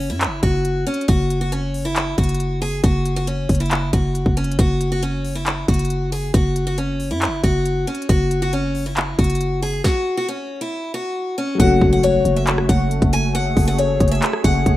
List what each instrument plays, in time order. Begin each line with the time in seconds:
Already playing: 808-style bass F#1
0.10 808-style bass F#2, steel-string acoustic guitar E4
0.21 clap, closed hi-hat
0.26 808-style bass F#1
0.43 808-style bass F#1, steel-string acoustic guitar F#4, kick, closed hi-hat
0.65 closed hi-hat
0.87 steel-string acoustic guitar C#4, closed hi-hat
0.94 closed hi-hat
1.01 closed hi-hat
1.08 808-style bass F#1, steel-string acoustic guitar F#4, kick, closed hi-hat
1.30 closed hi-hat
1.41 steel-string acoustic guitar F#4
1.52 steel-string acoustic guitar C#4, closed hi-hat
1.74 open hi-hat
1.85 steel-string acoustic guitar E4
1.96 clap, closed hi-hat
2.18 808-style bass F#1, steel-string acoustic guitar F#4, kick, closed hi-hat
2.23 closed hi-hat
2.29 closed hi-hat
2.34 closed hi-hat
2.40 closed hi-hat
2.62 steel-string acoustic guitar G#4, open hi-hat
2.84 808-style bass F#1, steel-string acoustic guitar F#4, kick, closed hi-hat
3.06 closed hi-hat
3.16 steel-string acoustic guitar F#4
3.27 steel-string acoustic guitar C#4, closed hi-hat
3.49 808-style bass F#1, kick, closed hi-hat, open hi-hat
3.55 closed hi-hat
3.60 steel-string acoustic guitar E4, closed hi-hat
3.66 closed hi-hat
3.71 clap, closed hi-hat
3.93 808-style bass F#1, steel-string acoustic guitar F#4, kick, closed hi-hat
4.15 closed hi-hat
4.26 808-style bass F#1, kick
4.37 steel-string acoustic guitar C#4, closed hi-hat
4.44 closed hi-hat
4.52 closed hi-hat
4.59 808-style bass F#1, steel-string acoustic guitar F#4, kick, closed hi-hat
4.81 closed hi-hat
4.92 steel-string acoustic guitar F#4
5.03 steel-string acoustic guitar C#4, closed hi-hat
5.25 open hi-hat
5.35 steel-string acoustic guitar E4
5.46 clap, closed hi-hat
5.68 808-style bass F#1, steel-string acoustic guitar F#4, kick, closed hi-hat
5.74 closed hi-hat
5.79 closed hi-hat
5.85 closed hi-hat
5.90 closed hi-hat
6.12 steel-string acoustic guitar G#4, open hi-hat
6.34 808-style bass F#1, steel-string acoustic guitar F#4, kick, closed hi-hat
6.56 closed hi-hat
6.67 steel-string acoustic guitar F#4
6.78 steel-string acoustic guitar C#4, closed hi-hat
7.00 open hi-hat
7.11 808-style bass F#2, steel-string acoustic guitar E4
7.22 clap, closed hi-hat
7.27 808-style bass F#1
7.44 808-style bass F#1, steel-string acoustic guitar F#4, kick, closed hi-hat
7.65 closed hi-hat
7.87 steel-string acoustic guitar C#4, closed hi-hat
7.95 closed hi-hat
8.02 closed hi-hat
8.09 808-style bass F#1, steel-string acoustic guitar F#4, kick, closed hi-hat
8.31 closed hi-hat
8.42 steel-string acoustic guitar F#4
8.53 steel-string acoustic guitar C#4, closed hi-hat
8.75 open hi-hat
8.86 steel-string acoustic guitar E4
8.97 clap, closed hi-hat
9.19 808-style bass F#1, steel-string acoustic guitar F#4, kick, closed hi-hat
9.24 closed hi-hat
9.30 closed hi-hat
9.35 closed hi-hat
9.41 closed hi-hat
9.62 steel-string acoustic guitar G#4, open hi-hat
9.84 steel-string acoustic guitar F#4, kick, snare
10.17 steel-string acoustic guitar F#4
10.28 steel-string acoustic guitar C#4
10.61 steel-string acoustic guitar E4
10.94 steel-string acoustic guitar F#4
11.38 steel-string acoustic guitar C#4
11.55 grand piano F#3 A3
11.60 808-style bass F#1, analog synth pad A3 C#4 F#4 C#5, grand piano C#4 F#4, steel-string acoustic guitar F#5, kick, closed hi-hat, impact
11.81 808-style bass F#1, kick
11.93 steel-string acoustic guitar F#5
12.03 steel-string acoustic guitar C#5, closed hi-hat
12.25 808-style bass F#1, closed hi-hat
12.36 steel-string acoustic guitar E5
12.47 clap, closed hi-hat
12.58 cross-stick
12.69 808-style bass F#1, steel-string acoustic guitar F#5, kick, closed hi-hat
12.91 closed hi-hat
13.02 808-style bass F#1, kick, closed hi-hat
13.13 steel-string acoustic guitar G#5, closed hi-hat
13.35 analog synth pad G#4, steel-string acoustic guitar F#5, closed hi-hat
13.57 808-style bass F#1, kick, open hi-hat
13.68 steel-string acoustic guitar F#5
13.79 steel-string acoustic guitar C#5, closed hi-hat
14.00 808-style bass F#1, kick, closed hi-hat
14.08 steel-string acoustic guitar E5, closed hi-hat
14.15 closed hi-hat
14.22 clap, closed hi-hat
14.33 cross-stick
14.44 808-style bass F#1, steel-string acoustic guitar F#5, kick, closed hi-hat
14.66 808-style bass F#1, kick, closed hi-hat